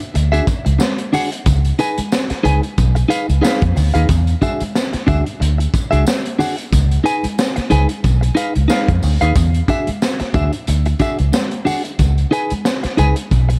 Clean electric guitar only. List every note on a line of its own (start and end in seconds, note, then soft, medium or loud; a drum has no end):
0.14 muted clean electric guitar stroke medium
0.32 0.45 D4 medium
0.32 0.46 F#4 medium
0.32 0.46 G#4 medium
0.32 0.47 E5 medium
0.47 muted clean electric guitar stroke soft
0.65 muted clean electric guitar stroke soft
0.79 muted clean electric guitar stroke medium
1.13 1.28 D4 medium
1.13 1.29 F#4 medium
1.13 1.29 G#4 medium
1.13 1.29 F#5 medium
1.32 muted clean electric guitar stroke soft
1.79 1.98 D#4 medium
1.79 1.99 G#4 medium
1.79 1.99 B4 loud
1.79 1.99 G#5 medium
2.30 muted clean electric guitar stroke soft
2.43 2.63 D#4 medium
2.43 2.62 G#4 loud
2.43 2.62 B4 loud
2.43 2.62 G#5 loud
2.62 muted clean electric guitar stroke soft
2.95 muted clean electric guitar stroke medium
3.08 3.29 D#4 loud
3.08 3.28 G#4 medium
3.08 3.27 B4 loud
3.08 3.26 F5 loud
3.28 muted clean electric guitar stroke medium
3.42 3.62 D#4 medium
3.42 3.62 G#4 loud
3.42 3.63 B4 loud
3.42 3.63 F5 loud
3.75 muted clean electric guitar stroke soft
3.94 4.07 D#4 medium
3.94 4.07 G#4 medium
3.94 4.07 B4 medium
3.94 4.06 F5 medium
4.42 4.61 D4 medium
4.42 4.62 F#4 medium
4.42 4.62 G#4 loud
4.42 4.62 E5 medium
4.93 muted clean electric guitar stroke soft
5.07 5.27 D4 medium
5.07 5.25 F#4 medium
5.07 5.24 G#4 medium
5.07 5.24 E5 medium
5.26 muted clean electric guitar stroke soft
5.40 muted clean electric guitar stroke soft
5.58 muted clean electric guitar stroke soft
5.91 6.04 D4 medium
5.91 6.04 F#4 medium
5.91 6.05 G#4 medium
5.91 6.05 E5 medium
6.06 muted clean electric guitar stroke medium
6.39 6.55 D4 medium
6.39 6.55 F#4 medium
6.39 6.55 G#4 medium
6.39 6.56 F#5 medium
6.57 muted clean electric guitar stroke soft
7.04 7.24 D#4 medium
7.04 7.25 G#4 medium
7.04 7.25 B4 medium
7.04 7.25 G#5 loud
7.56 muted clean electric guitar stroke soft
7.70 7.90 D#4 medium
7.70 7.89 G#4 medium
7.70 7.89 B4 medium
7.70 7.88 G#5 medium
7.89 muted clean electric guitar stroke soft
8.21 muted clean electric guitar stroke soft
8.35 8.56 D#4 medium
8.35 8.54 G#4 medium
8.35 8.54 B4 loud
8.35 8.53 F5 loud
8.54 muted clean electric guitar stroke soft
8.68 8.89 D#4 loud
8.68 8.89 G#4 medium
8.68 8.89 B4 loud
8.68 8.90 F5 loud
9.02 muted clean electric guitar stroke soft
9.21 9.34 D#4 medium
9.21 9.34 G#4 medium
9.21 9.34 B4 medium
9.21 9.33 F5 medium
9.68 9.88 D4 loud
9.68 9.89 F#4 medium
9.68 9.89 G#4 medium
9.68 9.89 E5 loud
10.20 muted clean electric guitar stroke soft
10.34 10.54 D4 loud
10.34 10.53 F#4 medium
10.34 10.52 G#4 medium
10.34 10.51 E5 medium
10.53 muted clean electric guitar stroke soft
10.68 muted clean electric guitar stroke soft
10.86 muted clean electric guitar stroke medium
11.00 11.20 D4 medium
11.00 11.19 F#4 medium
11.00 11.18 G#4 medium
11.00 11.17 E5 loud
11.19 muted clean electric guitar stroke medium
11.32 muted clean electric guitar stroke medium
11.65 11.81 D4 medium
11.65 11.82 F#4 medium
11.65 11.82 G#4 medium
11.65 11.82 F#5 medium
11.84 muted clean electric guitar stroke medium
12.31 12.51 D#4 medium
12.31 12.51 G#4 loud
12.31 12.52 B4 loud
12.31 12.52 G#5 loud
12.83 muted clean electric guitar stroke soft
12.97 13.17 D#4 medium
12.97 13.17 G#4 medium
12.97 13.16 B4 loud
12.97 13.16 G#5 medium
13.16 muted clean electric guitar stroke soft
13.49 muted clean electric guitar stroke medium